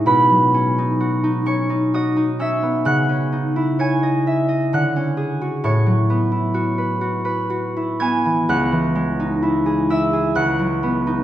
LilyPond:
\new Staff \with { instrumentName = "Harp" } { \time 3/4 \key cis \minor \tempo 4 = 64 << { <b' b''>4. <cis'' cis'''>8 <dis'' dis'''>8 <e'' e'''>8 | <fis'' fis'''>4 <gis'' gis'''>4 <fis'' fis'''>4 | <cis'' cis'''>2~ <cis'' cis'''>8 <gis'' gis'''>8 | <fis'' fis'''>4. <e'' e'''>8 <fis'' fis'''>4 | } \\ { <b, cis' dis'>16 fis16 cis'16 dis'16 fis'16 dis'16 cis'16 dis'16 fis'16 dis'16 cis'16 b16 | cis16 cis'16 dis'16 e'16 cis''16 dis''16 e''16 dis''16 d16 cis'16 gis'16 fis'16 | a,16 fis16 b16 e'16 fis'16 b'16 fis'16 b'16 fis'16 e'16 b16 e16 | cis,16 e16 gis16 dis'16 e'16 gis'16 e'16 gis'16 cis,16 fis16 b16 dis'16 | } >> }